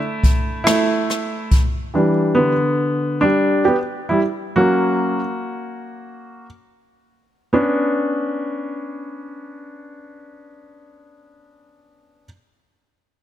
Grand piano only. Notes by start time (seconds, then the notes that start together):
Already playing: A3 E4
0.64 A3 E4
1.94 E3 G3 D4
2.35 D3 B3
3.21 G3 D4
3.65 B3 G4
4.09 G3 E4
4.56 F#3 A#3 C#4 F#4
7.53 B3 C#4 D4